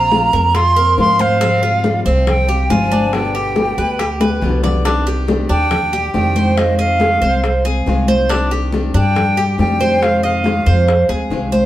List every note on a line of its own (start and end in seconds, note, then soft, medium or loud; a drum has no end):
0.00 0.27 A#1 medium
0.00 0.11 F3 medium
0.00 0.11 A#3 medium
0.00 0.12 C4 medium
0.00 0.12 F4 medium
0.00 0.32 F4 medium
0.00 0.57 A#5 loud
0.11 0.32 F3 medium
0.11 0.33 A#3 medium
0.11 0.33 C4 medium
0.11 0.32 F4 medium
0.11 high bongo medium
0.11 high conga medium
0.33 0.94 F2 loud
0.33 0.54 A#3 soft
0.33 0.54 C4 soft
0.33 0.54 F4 medium
0.33 0.54 A#4 medium
0.33 high bongo soft
0.55 0.76 F4 medium
0.55 0.98 C6 loud
0.55 muted nylon-string guitar stroke medium
0.55 high bongo medium
0.55 high conga soft
0.76 0.97 A#3 soft
0.76 0.98 C4 soft
0.76 0.97 F4 medium
0.76 1.18 A#4 medium
0.76 high bongo soft
0.76 high conga soft
0.98 1.99 G#2 medium
0.98 1.40 F3 medium
0.98 1.40 A#3 medium
0.98 1.41 C4 medium
0.98 1.41 F4 medium
0.98 1.22 C6 loud
0.98 high bongo soft
0.98 low bongo medium
0.98 high conga medium
1.19 1.40 C5 medium
1.19 2.01 F5 loud
1.19 high conga medium
1.40 1.82 C3 medium
1.40 1.83 F3 medium
1.40 1.83 G3 medium
1.40 1.62 C4 medium
1.40 1.84 C4 medium
1.40 1.84 F4 medium
1.40 high bongo medium
1.40 high conga soft
1.62 2.04 F4 medium
1.62 high bongo soft
1.62 high conga soft
1.83 2.04 C3 medium
1.83 2.05 F3 medium
1.83 2.05 G3 medium
1.83 2.05 C4 medium
1.83 2.04 F4 medium
1.83 high bongo medium
1.83 high conga medium
2.05 2.66 C2 medium
2.05 2.26 G3 soft
2.05 2.47 C4 medium
2.05 2.27 C4 soft
2.05 2.26 F4 soft
2.05 high bongo soft
2.05 high conga soft
2.27 2.72 G5 loud
2.27 muted nylon-string guitar stroke medium
2.27 high bongo medium
2.27 high conga soft
2.27 low conga medium
2.48 2.70 G3 soft
2.48 2.70 C4 soft
2.48 2.69 F4 medium
2.48 2.69 G4 medium
2.48 high bongo soft
2.48 high conga soft
2.70 3.72 G1 medium
2.70 3.12 C3 medium
2.70 3.13 F3 medium
2.70 3.13 G3 medium
2.70 3.13 C4 medium
2.70 2.91 F4 medium
2.70 3.13 F4 medium
2.70 3.15 G#5 loud
2.70 high bongo soft
2.70 low bongo medium
2.70 high conga medium
2.92 3.33 D4 medium
2.92 high conga medium
3.13 3.54 B2 medium
3.13 3.55 D3 medium
3.13 3.55 G3 medium
3.13 3.56 B3 medium
3.13 3.56 G4 medium
3.13 4.43 G5 medium
3.13 high bongo medium
3.13 high conga soft
3.35 3.77 G4 medium
3.35 high bongo soft
3.35 high conga soft
3.55 3.77 B2 medium
3.55 3.77 D3 medium
3.55 3.77 G3 medium
3.55 3.77 B3 medium
3.55 3.76 G4 medium
3.55 high bongo medium
3.55 high conga medium
3.78 4.38 D2 medium
3.78 3.99 G3 soft
3.78 3.99 B3 soft
3.78 3.98 G4 soft
3.78 3.99 B4 medium
3.78 high bongo soft
3.78 high conga soft
3.99 4.20 G4 medium
3.99 muted nylon-string guitar stroke medium
3.99 high bongo medium
3.99 high conga soft
4.20 4.42 G3 soft
4.20 4.42 B3 soft
4.20 4.41 G4 medium
4.20 4.63 B4 medium
4.20 high bongo medium
4.20 high conga medium
4.41 5.44 C2 medium
4.41 4.84 B2 medium
4.41 4.84 D3 medium
4.41 4.85 G3 medium
4.41 4.85 B3 medium
4.41 4.85 G4 medium
4.41 low conga medium
4.49 low bongo medium
4.63 4.85 D5 medium
4.63 low bongo loud
4.63 low conga loud
4.85 5.26 C3 medium
4.85 5.27 D#3 medium
4.85 5.27 G3 medium
4.85 5.06 D4 medium
4.85 5.28 D4 medium
4.85 5.28 G4 medium
4.85 high bongo medium
4.85 high conga soft
5.07 5.49 G4 medium
5.07 high bongo soft
5.07 high conga soft
5.27 5.48 C3 medium
5.27 5.49 D#3 medium
5.27 5.49 G3 medium
5.27 5.49 D4 medium
5.27 5.48 G4 medium
5.27 high bongo medium
5.27 high conga medium
5.49 6.10 D#2 medium
5.49 5.70 G3 soft
5.49 5.91 D4 medium
5.49 5.71 D4 soft
5.49 5.70 G4 soft
5.49 6.11 G5 loud
5.49 high bongo soft
5.71 muted nylon-string guitar stroke medium
5.71 high bongo medium
5.71 high conga soft
5.71 low conga medium
5.93 6.14 G3 soft
5.93 6.14 D4 soft
5.93 6.13 G4 soft
5.93 6.35 G4 medium
5.93 high bongo soft
5.93 high conga soft
6.14 7.16 F2 medium
6.14 6.56 C3 medium
6.14 6.56 D#3 medium
6.14 6.57 G3 medium
6.14 6.57 D4 medium
6.14 6.57 G4 medium
6.14 6.59 G5 loud
6.14 high bongo soft
6.14 low bongo medium
6.14 high conga medium
6.36 6.78 C5 medium
6.36 high conga medium
6.57 6.99 C3 medium
6.57 7.00 D#3 medium
6.57 7.00 G#3 medium
6.57 7.00 C4 medium
6.57 7.00 F4 medium
6.57 6.78 D#5 medium
6.57 high bongo medium
6.57 high conga soft
6.79 7.21 D#5 medium
6.79 7.61 F5 medium
6.79 high bongo soft
6.79 high conga soft
7.00 7.21 C3 medium
7.00 7.21 D#3 medium
7.00 7.22 G#3 medium
7.00 7.22 C4 medium
7.00 7.20 F4 medium
7.00 high bongo medium
7.00 high conga medium
7.22 7.82 C2 medium
7.22 7.43 G#3 soft
7.22 7.43 C4 soft
7.22 7.43 F4 soft
7.22 7.64 C5 medium
7.22 high bongo soft
7.22 high conga soft
7.43 muted nylon-string guitar stroke medium
7.43 high bongo medium
7.43 high conga soft
7.65 7.86 G#3 soft
7.65 7.86 C4 soft
7.65 7.86 F4 medium
7.65 8.07 G#4 medium
7.65 high bongo soft
7.65 high conga soft
7.86 8.88 C2 medium
7.86 8.28 C3 medium
7.86 8.29 D#3 medium
7.86 8.29 G#3 medium
7.86 8.30 C4 medium
7.86 8.30 F4 medium
7.86 high bongo soft
7.86 low bongo medium
7.86 high conga soft
8.08 8.29 C5 medium
8.08 high conga medium
8.29 8.71 C3 medium
8.29 8.72 D#3 medium
8.29 8.72 G3 medium
8.29 8.50 D4 medium
8.29 8.73 D4 medium
8.29 8.73 G4 medium
8.29 high bongo medium
8.29 high conga soft
8.51 8.93 G4 medium
8.51 high bongo soft
8.51 high conga soft
8.72 8.93 C3 medium
8.72 8.93 D#3 medium
8.72 8.94 G3 medium
8.72 8.94 D4 medium
8.72 8.93 G4 medium
8.72 high bongo medium
8.72 high conga medium
8.94 9.55 G2 medium
8.94 9.15 G3 soft
8.94 9.36 D4 medium
8.94 9.15 D4 soft
8.94 9.15 G4 soft
8.94 9.56 G5 loud
8.94 high bongo soft
8.94 high conga soft
9.15 muted nylon-string guitar stroke medium
9.15 high bongo medium
9.15 high conga soft
9.15 low conga medium
9.36 9.58 G3 soft
9.36 9.58 D4 soft
9.36 9.57 G4 medium
9.36 9.79 G4 medium
9.36 high bongo soft
9.36 high conga soft
9.58 10.60 F2 medium
9.58 10.00 C3 medium
9.58 10.01 D#3 medium
9.58 10.01 G3 medium
9.58 10.01 D4 medium
9.58 10.02 G4 medium
9.58 10.04 G5 loud
9.58 high bongo soft
9.58 low bongo medium
9.58 high conga medium
9.80 10.22 C5 medium
9.80 high conga medium
10.01 10.43 C3 medium
10.01 10.44 D#3 medium
10.01 10.44 G#3 medium
10.01 10.44 C4 medium
10.01 10.45 F4 medium
10.01 10.24 F5 loud
10.01 high bongo medium
10.01 high conga soft
10.23 10.65 D#5 medium
10.23 11.06 F5 medium
10.23 high bongo soft
10.44 10.65 C3 medium
10.44 10.65 D#3 medium
10.44 10.66 G#3 medium
10.44 10.66 C4 medium
10.44 10.64 F4 medium
10.44 high bongo medium
10.44 high conga medium
10.66 11.06 F2 loud
10.66 10.87 C4 soft
10.66 10.87 F4 soft
10.66 11.08 C5 medium
10.66 high bongo soft
10.87 muted nylon-string guitar stroke medium
10.87 high bongo medium
10.87 high conga soft
11.09 11.29 D2 medium
11.09 11.30 G#3 soft
11.09 11.30 C4 soft
11.09 11.29 F4 soft
11.09 11.51 G#4 medium
11.09 high bongo soft
11.09 high conga soft
11.30 11.66 C2 medium
11.30 11.66 C3 medium
11.30 11.66 D#3 medium
11.30 11.66 G#3 medium
11.30 11.66 C4 medium
11.30 11.66 F4 medium
11.30 high bongo soft
11.30 low bongo medium
11.30 high conga soft
11.52 11.66 C5 medium
11.52 high conga medium